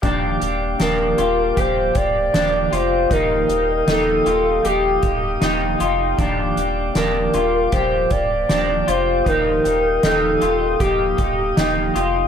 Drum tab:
HH |xxxxxxxx|xxxxxxxx|xxxxxxxx|xxxxxxxx|
SD |--o---o-|--o---o-|--o---o-|--o---o-|
BD |o---oo--|o----o--|o---oo--|o---oo--|